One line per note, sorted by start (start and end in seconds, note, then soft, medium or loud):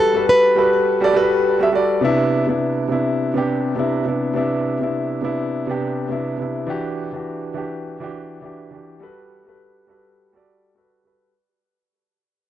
0.00 0.10 G3 medium
0.00 0.11 F#4 medium
0.00 0.11 A4 medium
0.00 0.26 A4 loud
0.00 0.12 B4 loud
0.13 0.53 G3 medium
0.13 0.53 F#4 medium
0.13 0.54 A4 medium
0.13 0.55 B4 medium
0.29 1.41 B4 loud
0.55 0.98 G3 medium
0.55 0.98 F#4 medium
0.55 0.99 A4 medium
0.55 0.99 B4 medium
1.01 1.12 G3 loud
1.01 1.12 F#4 medium
1.01 1.13 A4 medium
1.01 1.13 D5 loud
1.13 1.56 G3 loud
1.13 1.56 F#4 medium
1.13 1.57 A4 medium
1.13 1.57 B4 loud
1.59 1.66 G3 medium
1.59 1.67 F#4 medium
1.59 1.68 A4 medium
1.59 1.68 E5 loud
1.72 1.99 G3 medium
1.72 1.99 F#4 medium
1.72 2.00 A4 medium
1.72 2.00 D5 loud
2.01 2.43 C3 medium
2.01 2.44 B3 medium
2.01 2.45 D4 medium
2.01 2.45 E4 loud
2.47 2.86 C3 medium
2.47 2.87 B3 medium
2.47 2.87 D4 medium
2.47 2.88 E4 medium
2.88 3.31 C3 medium
2.88 3.31 B3 medium
2.88 3.32 D4 medium
2.88 3.32 E4 medium
3.34 3.73 C3 medium
3.34 3.74 B3 medium
3.34 3.75 D4 medium
3.34 3.75 G4 medium
3.76 4.02 C3 medium
3.76 4.03 B3 medium
3.76 4.04 D4 medium
3.76 4.04 E4 medium
4.05 4.32 C3 medium
4.05 4.32 B3 medium
4.05 4.33 D4 medium
4.05 4.33 E4 medium
4.34 4.76 C3 medium
4.34 4.77 B3 medium
4.34 4.77 D4 medium
4.34 4.78 E4 medium
4.80 5.19 C3 medium
4.80 5.20 B3 medium
4.80 5.20 D4 medium
4.80 5.21 E4 medium
5.21 5.64 C3 medium
5.21 5.64 B3 medium
5.21 5.65 D4 medium
5.21 5.65 E4 medium
5.67 6.06 C3 medium
5.67 6.07 B3 medium
5.67 6.08 D4 medium
5.67 6.08 G4 medium
6.09 6.35 C3 medium
6.09 6.36 B3 medium
6.09 6.37 D4 medium
6.09 6.37 E4 medium
6.38 6.65 C3 medium
6.38 6.65 B3 medium
6.38 6.66 D4 medium
6.38 6.66 E4 medium
6.67 7.09 E3 medium
6.67 7.10 D4 medium
6.67 7.10 F#4 medium
6.67 7.11 G4 loud
7.12 7.52 E3 medium
7.12 7.53 D4 medium
7.12 7.53 F#4 medium
7.12 7.54 G4 medium
7.54 7.97 E3 medium
7.54 7.97 D4 medium
7.54 7.98 F#4 medium
7.54 7.98 G4 medium
8.00 8.39 E3 medium
8.00 8.40 D4 medium
8.00 8.41 F#4 medium
8.00 8.41 G4 medium
8.42 8.69 E3 medium
8.42 8.69 D4 medium
8.42 8.70 F#4 medium
8.42 8.70 G4 medium
8.71 8.98 E3 medium
8.71 8.98 D4 medium
8.71 8.99 F#4 medium
8.71 8.99 G4 medium
9.00 9.42 G3 medium
9.00 9.43 F#4 medium
9.00 9.43 A4 medium
9.00 9.44 B4 medium
9.45 9.85 G3 medium
9.45 9.85 F#4 medium
9.45 9.86 A4 medium
9.45 9.87 B4 medium
9.87 10.30 G3 medium
9.87 10.30 F#4 medium
9.87 10.31 A4 medium
9.87 10.31 B4 medium
10.33 10.72 G3 medium
10.33 10.73 F#4 medium
10.33 10.73 A4 medium
10.33 10.74 D5 medium
10.74 11.01 G3 medium
10.74 11.02 F#4 medium
10.74 11.03 A4 medium
10.74 11.03 B4 medium
11.03 11.30 G3 medium
11.03 11.31 F#4 medium
11.03 11.32 A4 medium
11.03 11.32 B4 medium